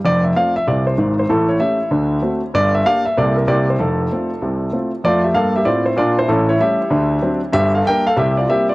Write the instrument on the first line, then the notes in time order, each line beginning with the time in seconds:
grand piano
0.05 F1 F2 D5
0.24 E5
0.36 A3 C4 F4 F5
0.56 E5
0.67 C2 C3 D5
0.87 C5
0.98 G#1 G#2
1.19 C5
1.29 A1 A2 A4
1.49 C#5
1.60 A3 C#4 G4 E5
1.91 D2 D3
2.22 A3 C4 F#4
2.54 G1 G2 D5
2.75 E5
2.85 A#3 D4 G4 F5
3.05 E5
3.17 C2 C3 A#3 E4 A4 D5
3.37 A#4
3.48 C2 C3 A#3 E4 G4 D5
3.70 C5
3.79 F1 F2 A4
4.12 A3 C4 F4
4.42 C2 C3
4.72 A3 C4 F4
5.04 F2 A3 F4 D5
5.24 G4 E5
5.34 G2 A#3 A4 F5
5.56 G4 E5
5.65 A2 C4 F4 D5
5.86 E4 C5
5.96 A#2 D4 F4 D5
6.19 E4 C5
6.28 A1 A2 C#4 A4
6.49 E4 C#5
6.60 G3 A3 C#4 G4 E5
6.90 D2 D3
7.22 F#3 C4 D4
7.53 G1 G2 G4 E5
7.75 A4 F5
7.87 G3 A#3 D4 A#4 G5
8.07 A4 F5
8.16 C2 C3 G4 E5
8.37 F4 D5
8.49 G3 A#3 C4 G4 E5
8.69 F4 D5